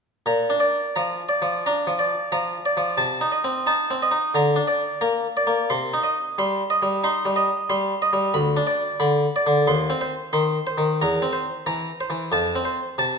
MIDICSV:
0, 0, Header, 1, 2, 480
1, 0, Start_track
1, 0, Key_signature, -2, "major"
1, 0, Tempo, 692841
1, 193, Time_signature, 4, 2, 24, 8
1, 1151, Tempo, 672646
1, 4991, Tempo, 660066
1, 9457, End_track
2, 0, Start_track
2, 0, Title_t, "Harpsichord"
2, 0, Program_c, 0, 6
2, 181, Note_on_c, 0, 46, 51
2, 185, Note_on_c, 0, 82, 60
2, 344, Note_off_c, 0, 46, 0
2, 345, Note_on_c, 0, 62, 41
2, 415, Note_on_c, 0, 74, 39
2, 444, Note_off_c, 0, 82, 0
2, 519, Note_off_c, 0, 62, 0
2, 663, Note_on_c, 0, 82, 40
2, 668, Note_on_c, 0, 53, 37
2, 679, Note_off_c, 0, 74, 0
2, 840, Note_off_c, 0, 53, 0
2, 891, Note_on_c, 0, 74, 45
2, 920, Note_off_c, 0, 82, 0
2, 983, Note_on_c, 0, 53, 38
2, 1150, Note_off_c, 0, 74, 0
2, 1152, Note_on_c, 0, 82, 44
2, 1153, Note_off_c, 0, 53, 0
2, 1154, Note_on_c, 0, 62, 43
2, 1301, Note_on_c, 0, 53, 40
2, 1321, Note_off_c, 0, 62, 0
2, 1386, Note_on_c, 0, 74, 39
2, 1404, Note_off_c, 0, 82, 0
2, 1474, Note_off_c, 0, 53, 0
2, 1622, Note_on_c, 0, 53, 41
2, 1622, Note_on_c, 0, 82, 46
2, 1639, Note_off_c, 0, 74, 0
2, 1791, Note_off_c, 0, 53, 0
2, 1860, Note_on_c, 0, 74, 44
2, 1874, Note_off_c, 0, 82, 0
2, 1943, Note_on_c, 0, 53, 39
2, 2089, Note_on_c, 0, 48, 47
2, 2089, Note_on_c, 0, 81, 64
2, 2099, Note_off_c, 0, 74, 0
2, 2101, Note_off_c, 0, 53, 0
2, 2249, Note_off_c, 0, 48, 0
2, 2256, Note_on_c, 0, 63, 40
2, 2333, Note_on_c, 0, 75, 41
2, 2346, Note_off_c, 0, 81, 0
2, 2423, Note_on_c, 0, 60, 39
2, 2426, Note_off_c, 0, 63, 0
2, 2581, Note_on_c, 0, 63, 41
2, 2584, Note_on_c, 0, 81, 45
2, 2588, Note_off_c, 0, 75, 0
2, 2589, Note_off_c, 0, 60, 0
2, 2748, Note_off_c, 0, 63, 0
2, 2752, Note_on_c, 0, 60, 42
2, 2833, Note_off_c, 0, 81, 0
2, 2837, Note_on_c, 0, 75, 44
2, 2901, Note_on_c, 0, 63, 41
2, 2913, Note_off_c, 0, 60, 0
2, 3059, Note_off_c, 0, 63, 0
2, 3066, Note_off_c, 0, 75, 0
2, 3066, Note_on_c, 0, 50, 51
2, 3071, Note_on_c, 0, 82, 68
2, 3217, Note_off_c, 0, 50, 0
2, 3219, Note_on_c, 0, 62, 41
2, 3302, Note_on_c, 0, 74, 43
2, 3316, Note_off_c, 0, 82, 0
2, 3386, Note_off_c, 0, 62, 0
2, 3542, Note_on_c, 0, 58, 43
2, 3542, Note_on_c, 0, 82, 50
2, 3553, Note_off_c, 0, 74, 0
2, 3710, Note_off_c, 0, 58, 0
2, 3795, Note_off_c, 0, 82, 0
2, 3796, Note_on_c, 0, 74, 49
2, 3869, Note_on_c, 0, 58, 42
2, 4030, Note_off_c, 0, 58, 0
2, 4032, Note_on_c, 0, 84, 67
2, 4034, Note_off_c, 0, 74, 0
2, 4034, Note_on_c, 0, 48, 54
2, 4189, Note_off_c, 0, 48, 0
2, 4200, Note_on_c, 0, 63, 44
2, 4272, Note_on_c, 0, 75, 45
2, 4287, Note_off_c, 0, 84, 0
2, 4366, Note_off_c, 0, 63, 0
2, 4521, Note_on_c, 0, 55, 45
2, 4523, Note_on_c, 0, 84, 49
2, 4525, Note_off_c, 0, 75, 0
2, 4685, Note_off_c, 0, 55, 0
2, 4748, Note_on_c, 0, 75, 46
2, 4770, Note_off_c, 0, 84, 0
2, 4834, Note_on_c, 0, 55, 45
2, 4987, Note_on_c, 0, 63, 49
2, 4990, Note_on_c, 0, 84, 54
2, 5001, Note_off_c, 0, 55, 0
2, 5002, Note_off_c, 0, 75, 0
2, 5144, Note_on_c, 0, 55, 46
2, 5157, Note_off_c, 0, 63, 0
2, 5223, Note_on_c, 0, 75, 52
2, 5241, Note_off_c, 0, 84, 0
2, 5313, Note_off_c, 0, 55, 0
2, 5466, Note_on_c, 0, 55, 48
2, 5467, Note_on_c, 0, 84, 55
2, 5474, Note_off_c, 0, 75, 0
2, 5632, Note_off_c, 0, 55, 0
2, 5702, Note_on_c, 0, 75, 50
2, 5716, Note_off_c, 0, 84, 0
2, 5782, Note_on_c, 0, 55, 48
2, 5935, Note_on_c, 0, 38, 64
2, 5935, Note_on_c, 0, 83, 75
2, 5944, Note_off_c, 0, 55, 0
2, 5944, Note_off_c, 0, 75, 0
2, 6097, Note_off_c, 0, 38, 0
2, 6098, Note_on_c, 0, 62, 48
2, 6173, Note_on_c, 0, 74, 51
2, 6196, Note_off_c, 0, 83, 0
2, 6274, Note_off_c, 0, 62, 0
2, 6413, Note_on_c, 0, 83, 50
2, 6414, Note_on_c, 0, 50, 47
2, 6436, Note_off_c, 0, 74, 0
2, 6592, Note_off_c, 0, 50, 0
2, 6675, Note_on_c, 0, 74, 52
2, 6676, Note_off_c, 0, 83, 0
2, 6753, Note_on_c, 0, 50, 50
2, 6904, Note_on_c, 0, 39, 64
2, 6906, Note_on_c, 0, 84, 78
2, 6914, Note_off_c, 0, 50, 0
2, 6915, Note_off_c, 0, 74, 0
2, 7064, Note_off_c, 0, 39, 0
2, 7067, Note_on_c, 0, 60, 51
2, 7151, Note_on_c, 0, 72, 54
2, 7161, Note_off_c, 0, 84, 0
2, 7238, Note_off_c, 0, 60, 0
2, 7381, Note_on_c, 0, 84, 60
2, 7383, Note_on_c, 0, 51, 49
2, 7402, Note_off_c, 0, 72, 0
2, 7553, Note_off_c, 0, 51, 0
2, 7626, Note_on_c, 0, 72, 58
2, 7636, Note_off_c, 0, 84, 0
2, 7706, Note_on_c, 0, 51, 49
2, 7864, Note_off_c, 0, 72, 0
2, 7865, Note_off_c, 0, 51, 0
2, 7881, Note_on_c, 0, 40, 66
2, 7881, Note_on_c, 0, 82, 78
2, 8028, Note_off_c, 0, 40, 0
2, 8031, Note_on_c, 0, 60, 53
2, 8107, Note_on_c, 0, 72, 54
2, 8124, Note_off_c, 0, 82, 0
2, 8196, Note_off_c, 0, 60, 0
2, 8352, Note_on_c, 0, 52, 52
2, 8352, Note_on_c, 0, 82, 53
2, 8359, Note_off_c, 0, 72, 0
2, 8518, Note_off_c, 0, 52, 0
2, 8600, Note_on_c, 0, 72, 51
2, 8602, Note_off_c, 0, 82, 0
2, 8668, Note_on_c, 0, 52, 46
2, 8827, Note_on_c, 0, 41, 69
2, 8829, Note_off_c, 0, 52, 0
2, 8832, Note_on_c, 0, 81, 74
2, 8835, Note_off_c, 0, 72, 0
2, 8985, Note_off_c, 0, 41, 0
2, 9000, Note_on_c, 0, 60, 50
2, 9069, Note_on_c, 0, 72, 58
2, 9086, Note_off_c, 0, 81, 0
2, 9165, Note_off_c, 0, 60, 0
2, 9311, Note_on_c, 0, 48, 53
2, 9315, Note_on_c, 0, 81, 59
2, 9323, Note_off_c, 0, 72, 0
2, 9457, Note_off_c, 0, 48, 0
2, 9457, Note_off_c, 0, 81, 0
2, 9457, End_track
0, 0, End_of_file